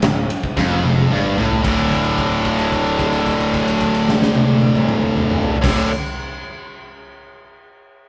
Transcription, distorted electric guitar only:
0.04 0.25 D2 medium
0.57 1.10 F2 loud
1.12 1.38 G2 loud
1.39 1.63 A2 loud
1.63 5.56 D2 loud
1.63 5.57 A2 loud
1.67 5.58 D3 loud
5.62 5.87 D2 medium
5.62 5.88 A2 loud
5.62 5.89 D3 medium

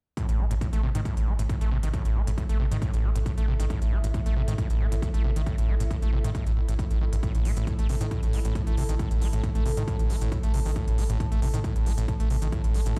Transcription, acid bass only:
0.17 0.27 A2 loud
0.29 0.41 A2 medium
0.39 0.46 A3 medium
0.51 0.54 A2 loud
0.61 0.68 A2 loud
0.73 0.82 A3 loud
0.83 0.90 C3 loud
0.95 1.01 D#3 loud
1.05 1.15 A2 loud
1.17 1.29 A2 medium
1.27 1.34 A3 medium
1.39 1.42 A2 loud
1.49 1.56 A2 loud
1.61 1.70 A3 loud
1.72 1.78 C3 loud
1.83 1.89 D#3 loud
1.94 2.03 A2 loud
2.05 2.17 A2 medium
2.16 2.22 A3 medium
2.27 2.31 A2 loud
2.38 2.44 A2 loud
2.49 2.58 A3 loud
2.60 2.66 C3 loud
2.71 2.77 D#3 loud
2.82 2.91 A2 loud
2.94 3.06 A2 medium
3.04 3.10 A3 medium
3.16 3.19 A2 loud
3.26 3.32 A2 loud
3.38 3.46 A3 loud
3.48 3.54 C3 loud
3.60 3.65 D#3 loud
3.70 3.80 A2 loud
3.82 3.94 A2 medium
3.92 3.99 A3 medium
4.04 4.07 A2 loud
4.14 4.21 A2 loud
4.26 4.35 A3 loud
4.36 4.43 C3 loud
4.48 4.54 D#3 loud
4.58 4.68 A2 loud
4.70 4.82 A2 medium
4.80 4.87 A3 medium
4.92 4.95 A2 loud
5.02 5.09 A2 loud
5.14 5.23 A3 loud
5.24 5.31 C3 loud
5.36 5.42 D#3 loud
5.47 5.56 A2 loud
5.58 5.70 A2 medium
5.69 5.75 A3 medium
5.80 5.84 A2 loud
5.91 5.97 A2 loud
6.02 6.11 A3 loud
6.13 6.19 C3 loud
6.24 6.30 D#3 loud
6.35 6.44 A2 loud
6.46 6.52 A2 medium
6.57 6.61 A2 medium
6.68 6.74 A2 medium
6.79 6.85 A2 medium
6.90 6.99 A2 medium
7.01 7.05 D#3 loud
7.13 7.16 G2 medium
7.23 7.33 A2 loud
7.35 7.47 A2 medium
7.45 7.52 A3 medium
7.57 7.65 A2 loud
7.67 7.74 A2 loud
7.79 7.87 A3 loud
7.89 7.96 C3 loud
8.01 8.07 D#3 loud
8.11 8.21 A2 loud
8.23 8.35 A2 medium
8.33 8.40 A3 medium
8.45 8.54 A2 loud
8.55 8.62 A2 loud
8.67 8.76 A3 loud
8.77 8.84 C3 loud
8.89 8.95 D#3 loud
8.99 9.09 A2 loud
9.11 9.23 A2 medium
9.21 9.28 A3 medium
9.33 9.42 A2 loud
9.44 9.50 A2 loud
9.55 9.64 A3 loud
9.66 9.72 C3 loud
9.77 9.83 D#3 loud
9.88 9.97 A2 loud
9.99 10.11 A2 medium
10.10 10.16 A3 medium
10.21 10.30 A2 loud
10.32 10.38 A2 loud
10.43 10.52 A3 loud
10.54 10.60 C3 loud
10.65 10.71 D#3 loud
10.76 10.86 A2 loud
10.88 11.00 A2 medium
10.98 11.04 A3 medium
11.10 11.18 A2 loud
11.20 11.27 A2 loud
11.32 11.40 A3 loud
11.42 11.49 C3 loud
11.54 11.60 D#3 loud
11.64 11.74 A2 loud
11.76 11.88 A2 medium
11.86 11.93 A3 medium
11.98 12.06 A2 loud
12.08 12.15 A2 loud
12.20 12.29 A3 loud
12.30 12.37 C3 loud
12.42 12.48 D#3 loud
12.52 12.62 A2 loud
12.64 12.76 A2 medium
12.75 12.81 A3 medium
12.86 12.95 A2 loud

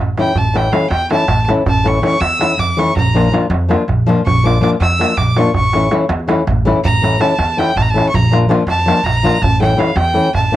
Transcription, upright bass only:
0.00 0.20 A1 medium
0.36 0.69 A1 medium
0.90 1.13 E2 loud
1.28 1.51 A1 medium
1.67 1.99 A1 medium
2.21 2.43 E2 loud
2.58 2.81 F2 medium
2.96 3.28 A#1 medium
3.50 3.73 F2 loud
3.88 4.11 A#1 medium
4.26 4.59 A#1 medium
4.80 5.03 F2 loud
5.17 5.40 A#1 medium
5.56 5.88 A1 medium
6.09 6.32 E2 loud
6.47 6.70 A1 loud
6.85 7.17 A1 medium
7.38 7.61 E2 loud
7.76 7.98 A1 medium
8.14 8.46 A#1 medium
8.66 8.89 F2 loud
9.04 9.27 A#1 medium
9.42 9.74 A1 loud
9.96 10.18 E2 loud
10.34 10.56 A1 medium

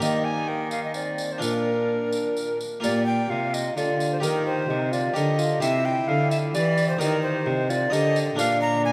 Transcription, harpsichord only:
0.00 1.38 D#3 soft
0.00 1.36 A#3 soft
0.00 1.37 G4 soft
0.00 1.37 A#4 soft
1.38 2.59 A#2 soft
1.38 2.78 D4 soft
1.38 2.78 F4 soft
1.38 2.79 A#4 soft
2.80 3.26 A#2 medium
2.80 4.17 A#3 soft
2.80 4.18 F4 soft
2.80 4.18 A#4 medium
3.31 3.73 C3 medium
3.77 4.19 D3 medium
4.20 4.65 D#3 medium
4.20 5.11 G4 medium
4.20 5.12 A#4 soft
4.70 5.12 C3 medium
5.14 5.58 D3 medium
5.14 5.59 G4 medium
5.14 5.60 A#4 medium
5.60 6.04 C3 medium
5.60 6.96 G4 medium
5.60 6.96 C5 medium
6.09 6.51 D3 medium
6.55 6.97 E3 medium
6.98 7.43 D#3 medium
6.98 7.89 D#4 medium
6.98 7.90 A#4 medium
7.46 7.89 C3 medium
7.90 8.35 D3 medium
7.90 8.37 A#4 medium
7.90 8.36 D#5 medium
8.35 8.93 A#2 medium
8.35 8.93 A#3 medium
8.35 8.93 D4 medium
8.35 8.93 A#4 medium

